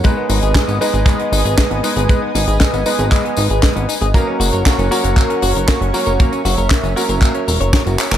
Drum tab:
HH |x-oxxxoxxxoxxxox|x-oxxxoxxxoxxxox|x-oxxxoxxxoxxxox|xxoxxxoxxxoxxxox|
TB |x-xxxxxxx-xxx-xx|x-xxxxxxx-xxx-xx|x-xxxxxxx-xxx-xx|xxxxxxxxx-xxxxxx|
CP |----x---x---x---|----x---x---x---|----x---x---x---|----x---x---x-xx|
SD |----o-------o---|--o-o-------o---|----o-------o---|--o-o-------o---|
BD |o---o---o---o---|o---o---o---o---|o---o---o---o---|o---o---o---o---|